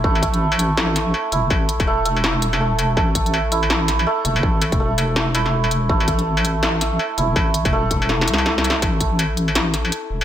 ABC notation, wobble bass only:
X:1
M:4/4
L:1/16
Q:"Swing 16ths" 1/4=164
K:Cmix
V:1 name="Wobble bass" clef=bass
A,,,12 z2 E,,,2 | A,,,3 E,,,12- E,,, | A,,,12 z2 E,,,2 | A,,,3 E,,,12- E,,, |
A,,,12 z2 E,,,2 | A,,,3 E,,,6- E,,, C,,6 | A,,,12 z2 E,,,2 |]